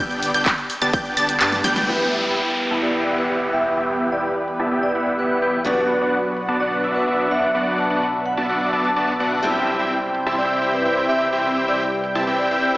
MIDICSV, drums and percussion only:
0, 0, Header, 1, 2, 480
1, 0, Start_track
1, 0, Key_signature, 1, "minor"
1, 0, Tempo, 472441
1, 1909, Time_signature, 4, 2, 24, 8
1, 12979, End_track
2, 0, Start_track
2, 0, Title_t, "Drums"
2, 109, Note_on_c, 9, 42, 28
2, 112, Note_on_c, 9, 82, 23
2, 211, Note_off_c, 9, 42, 0
2, 213, Note_off_c, 9, 82, 0
2, 229, Note_on_c, 9, 46, 106
2, 232, Note_on_c, 9, 82, 85
2, 331, Note_off_c, 9, 46, 0
2, 334, Note_off_c, 9, 82, 0
2, 350, Note_on_c, 9, 42, 58
2, 352, Note_on_c, 9, 82, 36
2, 451, Note_off_c, 9, 42, 0
2, 454, Note_off_c, 9, 82, 0
2, 467, Note_on_c, 9, 39, 123
2, 469, Note_on_c, 9, 42, 55
2, 469, Note_on_c, 9, 51, 65
2, 470, Note_on_c, 9, 36, 115
2, 472, Note_on_c, 9, 82, 47
2, 568, Note_off_c, 9, 39, 0
2, 571, Note_off_c, 9, 36, 0
2, 571, Note_off_c, 9, 42, 0
2, 571, Note_off_c, 9, 51, 0
2, 574, Note_off_c, 9, 82, 0
2, 589, Note_on_c, 9, 42, 27
2, 592, Note_on_c, 9, 82, 23
2, 691, Note_off_c, 9, 42, 0
2, 693, Note_off_c, 9, 82, 0
2, 709, Note_on_c, 9, 46, 90
2, 712, Note_on_c, 9, 82, 82
2, 810, Note_off_c, 9, 46, 0
2, 813, Note_off_c, 9, 82, 0
2, 829, Note_on_c, 9, 42, 56
2, 832, Note_on_c, 9, 82, 35
2, 931, Note_off_c, 9, 42, 0
2, 934, Note_off_c, 9, 82, 0
2, 950, Note_on_c, 9, 36, 126
2, 950, Note_on_c, 9, 42, 54
2, 950, Note_on_c, 9, 51, 66
2, 952, Note_on_c, 9, 82, 47
2, 1051, Note_off_c, 9, 42, 0
2, 1051, Note_off_c, 9, 51, 0
2, 1052, Note_off_c, 9, 36, 0
2, 1054, Note_off_c, 9, 82, 0
2, 1069, Note_on_c, 9, 42, 28
2, 1072, Note_on_c, 9, 82, 25
2, 1171, Note_off_c, 9, 42, 0
2, 1174, Note_off_c, 9, 82, 0
2, 1189, Note_on_c, 9, 46, 104
2, 1191, Note_on_c, 9, 82, 86
2, 1290, Note_off_c, 9, 46, 0
2, 1293, Note_off_c, 9, 82, 0
2, 1309, Note_on_c, 9, 42, 58
2, 1311, Note_on_c, 9, 82, 36
2, 1410, Note_off_c, 9, 42, 0
2, 1413, Note_off_c, 9, 82, 0
2, 1426, Note_on_c, 9, 39, 127
2, 1429, Note_on_c, 9, 42, 58
2, 1429, Note_on_c, 9, 51, 70
2, 1432, Note_on_c, 9, 82, 50
2, 1528, Note_off_c, 9, 39, 0
2, 1531, Note_off_c, 9, 42, 0
2, 1531, Note_off_c, 9, 51, 0
2, 1533, Note_off_c, 9, 82, 0
2, 1548, Note_on_c, 9, 38, 51
2, 1548, Note_on_c, 9, 42, 28
2, 1551, Note_on_c, 9, 82, 22
2, 1650, Note_off_c, 9, 38, 0
2, 1650, Note_off_c, 9, 42, 0
2, 1653, Note_off_c, 9, 82, 0
2, 1668, Note_on_c, 9, 38, 81
2, 1668, Note_on_c, 9, 46, 92
2, 1671, Note_on_c, 9, 82, 85
2, 1770, Note_off_c, 9, 38, 0
2, 1770, Note_off_c, 9, 46, 0
2, 1772, Note_off_c, 9, 82, 0
2, 1789, Note_on_c, 9, 38, 80
2, 1789, Note_on_c, 9, 42, 58
2, 1791, Note_on_c, 9, 82, 35
2, 1890, Note_off_c, 9, 38, 0
2, 1890, Note_off_c, 9, 42, 0
2, 1893, Note_off_c, 9, 82, 0
2, 1909, Note_on_c, 9, 42, 50
2, 1912, Note_on_c, 9, 82, 42
2, 2011, Note_off_c, 9, 42, 0
2, 2013, Note_off_c, 9, 82, 0
2, 2630, Note_on_c, 9, 42, 90
2, 2732, Note_off_c, 9, 42, 0
2, 3591, Note_on_c, 9, 42, 90
2, 3593, Note_on_c, 9, 82, 79
2, 3692, Note_off_c, 9, 42, 0
2, 3695, Note_off_c, 9, 82, 0
2, 3711, Note_on_c, 9, 42, 52
2, 3812, Note_off_c, 9, 42, 0
2, 3830, Note_on_c, 9, 42, 50
2, 3832, Note_on_c, 9, 82, 42
2, 3931, Note_off_c, 9, 42, 0
2, 3934, Note_off_c, 9, 82, 0
2, 3950, Note_on_c, 9, 42, 24
2, 4052, Note_off_c, 9, 42, 0
2, 4070, Note_on_c, 9, 42, 92
2, 4073, Note_on_c, 9, 82, 72
2, 4172, Note_off_c, 9, 42, 0
2, 4174, Note_off_c, 9, 82, 0
2, 4190, Note_on_c, 9, 42, 53
2, 4292, Note_off_c, 9, 42, 0
2, 4310, Note_on_c, 9, 42, 49
2, 4313, Note_on_c, 9, 82, 41
2, 4412, Note_off_c, 9, 42, 0
2, 4414, Note_off_c, 9, 82, 0
2, 4430, Note_on_c, 9, 42, 24
2, 4532, Note_off_c, 9, 42, 0
2, 4550, Note_on_c, 9, 42, 89
2, 4552, Note_on_c, 9, 82, 71
2, 4651, Note_off_c, 9, 42, 0
2, 4654, Note_off_c, 9, 82, 0
2, 4669, Note_on_c, 9, 42, 50
2, 4671, Note_on_c, 9, 82, 31
2, 4770, Note_off_c, 9, 42, 0
2, 4773, Note_off_c, 9, 82, 0
2, 4789, Note_on_c, 9, 42, 48
2, 4792, Note_on_c, 9, 82, 42
2, 4891, Note_off_c, 9, 42, 0
2, 4894, Note_off_c, 9, 82, 0
2, 4909, Note_on_c, 9, 42, 26
2, 5011, Note_off_c, 9, 42, 0
2, 5029, Note_on_c, 9, 42, 90
2, 5032, Note_on_c, 9, 82, 73
2, 5131, Note_off_c, 9, 42, 0
2, 5133, Note_off_c, 9, 82, 0
2, 5150, Note_on_c, 9, 42, 50
2, 5153, Note_on_c, 9, 82, 29
2, 5252, Note_off_c, 9, 42, 0
2, 5254, Note_off_c, 9, 82, 0
2, 5270, Note_on_c, 9, 42, 52
2, 5272, Note_on_c, 9, 82, 41
2, 5371, Note_off_c, 9, 42, 0
2, 5374, Note_off_c, 9, 82, 0
2, 5390, Note_on_c, 9, 42, 25
2, 5492, Note_off_c, 9, 42, 0
2, 5510, Note_on_c, 9, 42, 92
2, 5513, Note_on_c, 9, 82, 75
2, 5612, Note_off_c, 9, 42, 0
2, 5614, Note_off_c, 9, 82, 0
2, 5630, Note_on_c, 9, 42, 50
2, 5632, Note_on_c, 9, 82, 31
2, 5731, Note_off_c, 9, 42, 0
2, 5734, Note_off_c, 9, 82, 0
2, 5988, Note_on_c, 9, 42, 88
2, 5991, Note_on_c, 9, 82, 71
2, 6090, Note_off_c, 9, 42, 0
2, 6092, Note_off_c, 9, 82, 0
2, 6108, Note_on_c, 9, 42, 50
2, 6110, Note_on_c, 9, 82, 31
2, 6209, Note_off_c, 9, 42, 0
2, 6212, Note_off_c, 9, 82, 0
2, 6228, Note_on_c, 9, 42, 48
2, 6230, Note_on_c, 9, 82, 41
2, 6329, Note_off_c, 9, 42, 0
2, 6332, Note_off_c, 9, 82, 0
2, 6348, Note_on_c, 9, 42, 23
2, 6351, Note_on_c, 9, 82, 19
2, 6449, Note_off_c, 9, 42, 0
2, 6452, Note_off_c, 9, 82, 0
2, 6468, Note_on_c, 9, 42, 84
2, 6470, Note_on_c, 9, 82, 72
2, 6569, Note_off_c, 9, 42, 0
2, 6572, Note_off_c, 9, 82, 0
2, 6588, Note_on_c, 9, 42, 49
2, 6591, Note_on_c, 9, 82, 30
2, 6690, Note_off_c, 9, 42, 0
2, 6693, Note_off_c, 9, 82, 0
2, 6708, Note_on_c, 9, 42, 49
2, 6711, Note_on_c, 9, 82, 41
2, 6810, Note_off_c, 9, 42, 0
2, 6812, Note_off_c, 9, 82, 0
2, 6829, Note_on_c, 9, 42, 25
2, 6930, Note_off_c, 9, 42, 0
2, 6948, Note_on_c, 9, 42, 85
2, 6951, Note_on_c, 9, 82, 72
2, 7050, Note_off_c, 9, 42, 0
2, 7052, Note_off_c, 9, 82, 0
2, 7068, Note_on_c, 9, 42, 49
2, 7170, Note_off_c, 9, 42, 0
2, 7188, Note_on_c, 9, 42, 48
2, 7191, Note_on_c, 9, 82, 43
2, 7289, Note_off_c, 9, 42, 0
2, 7292, Note_off_c, 9, 82, 0
2, 7308, Note_on_c, 9, 42, 24
2, 7410, Note_off_c, 9, 42, 0
2, 7429, Note_on_c, 9, 42, 86
2, 7431, Note_on_c, 9, 82, 74
2, 7530, Note_off_c, 9, 42, 0
2, 7533, Note_off_c, 9, 82, 0
2, 7548, Note_on_c, 9, 42, 49
2, 7550, Note_on_c, 9, 82, 29
2, 7649, Note_off_c, 9, 42, 0
2, 7652, Note_off_c, 9, 82, 0
2, 7667, Note_on_c, 9, 42, 49
2, 7670, Note_on_c, 9, 82, 43
2, 7769, Note_off_c, 9, 42, 0
2, 7772, Note_off_c, 9, 82, 0
2, 7788, Note_on_c, 9, 42, 24
2, 7790, Note_on_c, 9, 82, 20
2, 7890, Note_off_c, 9, 42, 0
2, 7892, Note_off_c, 9, 82, 0
2, 7907, Note_on_c, 9, 42, 84
2, 7910, Note_on_c, 9, 82, 72
2, 8009, Note_off_c, 9, 42, 0
2, 8012, Note_off_c, 9, 82, 0
2, 8027, Note_on_c, 9, 42, 48
2, 8030, Note_on_c, 9, 82, 31
2, 8129, Note_off_c, 9, 42, 0
2, 8131, Note_off_c, 9, 82, 0
2, 8148, Note_on_c, 9, 42, 47
2, 8150, Note_on_c, 9, 82, 42
2, 8249, Note_off_c, 9, 42, 0
2, 8252, Note_off_c, 9, 82, 0
2, 8268, Note_on_c, 9, 42, 22
2, 8271, Note_on_c, 9, 82, 20
2, 8370, Note_off_c, 9, 42, 0
2, 8373, Note_off_c, 9, 82, 0
2, 8387, Note_on_c, 9, 42, 83
2, 8390, Note_on_c, 9, 82, 73
2, 8489, Note_off_c, 9, 42, 0
2, 8492, Note_off_c, 9, 82, 0
2, 8508, Note_on_c, 9, 42, 47
2, 8510, Note_on_c, 9, 82, 30
2, 8609, Note_off_c, 9, 42, 0
2, 8612, Note_off_c, 9, 82, 0
2, 8628, Note_on_c, 9, 42, 48
2, 8630, Note_on_c, 9, 82, 42
2, 8729, Note_off_c, 9, 42, 0
2, 8732, Note_off_c, 9, 82, 0
2, 8867, Note_on_c, 9, 42, 84
2, 8870, Note_on_c, 9, 82, 72
2, 8969, Note_off_c, 9, 42, 0
2, 8971, Note_off_c, 9, 82, 0
2, 8988, Note_on_c, 9, 42, 49
2, 9089, Note_off_c, 9, 42, 0
2, 9108, Note_on_c, 9, 42, 50
2, 9110, Note_on_c, 9, 82, 42
2, 9209, Note_off_c, 9, 42, 0
2, 9212, Note_off_c, 9, 82, 0
2, 9348, Note_on_c, 9, 42, 87
2, 9350, Note_on_c, 9, 82, 73
2, 9449, Note_off_c, 9, 42, 0
2, 9452, Note_off_c, 9, 82, 0
2, 9468, Note_on_c, 9, 42, 47
2, 9570, Note_off_c, 9, 42, 0
2, 9588, Note_on_c, 9, 42, 48
2, 9689, Note_off_c, 9, 42, 0
2, 9827, Note_on_c, 9, 42, 84
2, 9830, Note_on_c, 9, 82, 74
2, 9929, Note_off_c, 9, 42, 0
2, 9932, Note_off_c, 9, 82, 0
2, 9948, Note_on_c, 9, 42, 47
2, 10050, Note_off_c, 9, 42, 0
2, 10068, Note_on_c, 9, 42, 49
2, 10071, Note_on_c, 9, 82, 44
2, 10170, Note_off_c, 9, 42, 0
2, 10172, Note_off_c, 9, 82, 0
2, 10191, Note_on_c, 9, 82, 20
2, 10292, Note_off_c, 9, 82, 0
2, 10308, Note_on_c, 9, 42, 83
2, 10311, Note_on_c, 9, 82, 73
2, 10410, Note_off_c, 9, 42, 0
2, 10412, Note_off_c, 9, 82, 0
2, 10428, Note_on_c, 9, 42, 48
2, 10530, Note_off_c, 9, 42, 0
2, 10549, Note_on_c, 9, 42, 46
2, 10650, Note_off_c, 9, 42, 0
2, 10788, Note_on_c, 9, 42, 83
2, 10791, Note_on_c, 9, 82, 78
2, 10890, Note_off_c, 9, 42, 0
2, 10893, Note_off_c, 9, 82, 0
2, 10908, Note_on_c, 9, 42, 49
2, 11009, Note_off_c, 9, 42, 0
2, 11028, Note_on_c, 9, 42, 49
2, 11130, Note_off_c, 9, 42, 0
2, 11269, Note_on_c, 9, 42, 86
2, 11272, Note_on_c, 9, 82, 76
2, 11371, Note_off_c, 9, 42, 0
2, 11373, Note_off_c, 9, 82, 0
2, 11389, Note_on_c, 9, 42, 48
2, 11392, Note_on_c, 9, 82, 31
2, 11491, Note_off_c, 9, 42, 0
2, 11493, Note_off_c, 9, 82, 0
2, 11510, Note_on_c, 9, 42, 49
2, 11611, Note_off_c, 9, 42, 0
2, 11630, Note_on_c, 9, 42, 25
2, 11731, Note_off_c, 9, 42, 0
2, 11750, Note_on_c, 9, 42, 89
2, 11753, Note_on_c, 9, 82, 81
2, 11852, Note_off_c, 9, 42, 0
2, 11854, Note_off_c, 9, 82, 0
2, 11870, Note_on_c, 9, 42, 50
2, 11971, Note_off_c, 9, 42, 0
2, 11990, Note_on_c, 9, 42, 48
2, 12092, Note_off_c, 9, 42, 0
2, 12111, Note_on_c, 9, 42, 24
2, 12212, Note_off_c, 9, 42, 0
2, 12230, Note_on_c, 9, 42, 84
2, 12233, Note_on_c, 9, 82, 76
2, 12331, Note_off_c, 9, 42, 0
2, 12334, Note_off_c, 9, 82, 0
2, 12350, Note_on_c, 9, 42, 51
2, 12452, Note_off_c, 9, 42, 0
2, 12470, Note_on_c, 9, 42, 50
2, 12571, Note_off_c, 9, 42, 0
2, 12710, Note_on_c, 9, 42, 89
2, 12713, Note_on_c, 9, 82, 77
2, 12812, Note_off_c, 9, 42, 0
2, 12814, Note_off_c, 9, 82, 0
2, 12830, Note_on_c, 9, 42, 50
2, 12932, Note_off_c, 9, 42, 0
2, 12979, End_track
0, 0, End_of_file